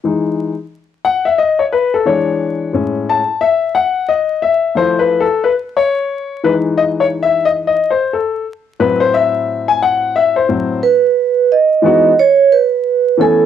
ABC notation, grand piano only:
X:1
M:4/4
L:1/16
Q:"Swing 16ths" 1/4=89
K:E
V:1 name="Grand piano"
z6 f e d c B A c4 | z2 a2 e2 f2 d2 e2 (3=c2 B2 A2 | B2 c4 B2 (3d2 c2 e2 (3d2 d2 =c2 | A2 z2 B =c e3 g f2 e c3 |
z6 [E,G,B,DF]2 z6 [E,A,B,Cg]2 |]
V:2 name="Grand piano" clef=bass
[E,G,D]2 z8 z2 [E,G,=D]4 | [A,,G,C]2 z8 z2 [=F,A,E]2 z2 | z6 [E,G,D]8 z2 | z4 [A,,F,=C]8- [A,,F,C]2 [A,,F,C]2 |
z16 |]